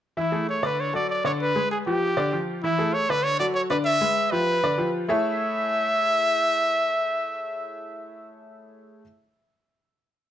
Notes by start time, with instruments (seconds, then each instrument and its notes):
0.17 upright piano E3 E4 E5, trumpet E4
0.32 upright piano A3 G#4 A4
0.49 trumpet C#5
0.63 upright piano D3 D4 D5, trumpet B4
0.80 trumpet C#5
0.93 upright piano F#3 F#4 A4, trumpet D5
1.10 trumpet D5
1.24 upright piano D3 D4 D5, trumpet C#5
1.42 trumpet B4
1.55 upright piano G#3 G#4 B4
1.71 trumpet G#4
1.86 upright piano F3 F4 G4, trumpet G4
2.17 upright piano D3 D4 D5
2.32 upright piano F3 F4 G4
2.63 upright piano E3 E4 E5, trumpet E4
2.78 upright piano A3 G#4 A4
2.94 trumpet C#5
3.09 upright piano D3 D4 D5, trumpet B4
3.23 trumpet C#5
3.40 upright piano F#3 F#4 A4, trumpet D5
3.55 trumpet C#5
3.70 upright piano D3 D4 D5, trumpet B4
3.85 trumpet E5
4.01 upright piano G#3 G#4 B4
4.31 upright piano F3 F4 G4, trumpet B4
4.63 upright piano D3 D4 D5
4.78 upright piano F3 F4 G4
5.08 upright piano A3 E4 G#4 A4 C#5 E5, trumpet E5